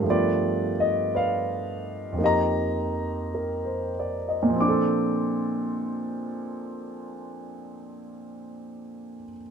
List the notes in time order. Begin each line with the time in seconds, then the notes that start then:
Already playing: A#4
0.00 G2 F3
0.04 A3 B3
0.10 F4 G4 B4 D5
0.80 D#5
1.15 B4 D5 F5
2.13 F2 F3
2.18 A#3 D#4
2.23 G4 D#5 A#5
3.35 A#4
3.65 C5
4.00 D5
4.29 D#5
4.43 A#2
4.50 F3
4.56 C4
4.61 D4 D6
4.69 A4